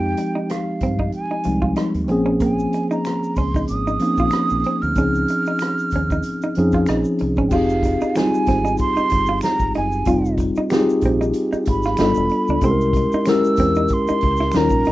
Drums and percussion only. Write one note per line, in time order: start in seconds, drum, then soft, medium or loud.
0.17 closed hi-hat medium
0.49 cross-stick medium
0.49 closed hi-hat medium
0.80 kick medium
0.80 closed hi-hat medium
0.99 kick medium
1.12 closed hi-hat medium
1.43 closed hi-hat medium
1.62 kick medium
1.76 cross-stick loud
1.76 closed hi-hat medium
1.94 closed hi-hat soft
2.08 closed hi-hat medium
2.40 kick loud
2.40 closed hi-hat medium
2.40 shaker medium
2.59 shaker soft
2.73 closed hi-hat medium
2.73 shaker soft
2.91 shaker soft
3.05 finger snap medium
3.05 cross-stick medium
3.05 closed hi-hat medium
3.05 shaker medium
3.24 shaker soft
3.36 kick medium
3.36 cross-stick soft
3.36 open hi-hat medium
3.36 shaker soft
3.54 kick medium
3.54 shaker soft
3.68 closed hi-hat medium
3.68 shaker medium
3.87 shaker soft
3.99 closed hi-hat medium
4.17 kick medium
4.17 shaker soft
4.31 finger snap medium
4.31 cross-stick loud
4.31 closed hi-hat medium
4.31 shaker medium
4.49 shaker soft
4.64 closed hi-hat medium
4.82 shaker soft
4.95 kick medium
4.95 closed hi-hat medium
4.95 shaker medium
5.14 shaker soft
5.28 closed hi-hat medium
5.28 shaker soft
5.46 shaker soft
5.59 finger snap medium
5.59 cross-stick loud
5.59 closed hi-hat medium
5.59 shaker medium
5.77 closed hi-hat soft
5.77 shaker soft
5.90 kick medium
5.90 closed hi-hat medium
5.90 shaker soft
6.10 kick medium
6.10 shaker soft
6.23 closed hi-hat medium
6.23 shaker medium
6.42 shaker soft
6.55 closed hi-hat medium
6.72 kick medium
6.72 cross-stick soft
6.72 shaker soft
6.86 finger snap medium
6.86 cross-stick loud
6.86 closed hi-hat medium
6.86 shaker medium
7.04 shaker soft
7.19 closed hi-hat medium
7.36 kick medium
7.36 shaker soft
7.51 kick loud
7.51 crash medium
7.51 shaker medium
7.70 shaker soft
7.83 kick medium
7.83 closed hi-hat medium
7.83 shaker soft
8.01 shaker soft
8.15 finger snap medium
8.15 snare loud
8.15 closed hi-hat medium
8.15 shaker medium
8.34 shaker soft
8.46 kick medium
8.46 snare soft
8.46 closed hi-hat medium
8.46 shaker soft
8.66 shaker soft
8.78 kick loud
8.78 closed hi-hat medium
8.78 shaker medium
8.97 shaker soft
9.10 kick loud
9.10 closed hi-hat medium
9.26 shaker medium
9.41 finger snap medium
9.41 snare loud
9.41 closed hi-hat medium
9.41 shaker medium
9.59 kick medium
9.59 shaker soft
9.74 closed hi-hat medium
9.92 shaker soft
10.05 kick loud
10.05 closed hi-hat medium
10.05 shaker medium
10.25 shaker soft
10.37 kick medium
10.37 closed hi-hat medium
10.37 shaker soft
10.56 shaker soft
10.70 finger snap medium
10.70 snare loud
10.70 closed hi-hat medium
10.70 shaker medium
10.89 shaker soft
11.01 kick medium
11.01 closed hi-hat medium
11.01 shaker soft
11.22 shaker medium
11.33 closed hi-hat medium
11.33 shaker medium
11.53 shaker soft
11.65 kick loud
11.65 closed hi-hat medium
11.83 snare soft
11.83 shaker medium
11.97 finger snap medium
11.97 snare loud
11.97 closed hi-hat medium
11.97 shaker medium
12.15 shaker medium
12.29 closed hi-hat medium
12.48 shaker soft
12.61 kick loud
12.61 closed hi-hat medium
12.61 shaker medium
12.81 shaker soft
12.93 kick medium
12.93 closed hi-hat medium
12.93 shaker soft
13.12 shaker soft
13.25 finger snap medium
13.25 snare loud
13.25 closed hi-hat medium
13.25 shaker medium
13.44 shaker soft
13.56 kick medium
13.56 closed hi-hat medium
13.56 shaker soft
13.75 shaker soft
13.88 kick loud
13.88 closed hi-hat medium
13.88 shaker medium
14.07 shaker soft
14.21 kick medium
14.21 closed hi-hat medium
14.37 snare soft
14.37 shaker medium
14.52 finger snap medium
14.52 snare loud
14.52 closed hi-hat medium
14.52 shaker medium
14.69 kick medium
14.69 shaker soft
14.85 closed hi-hat medium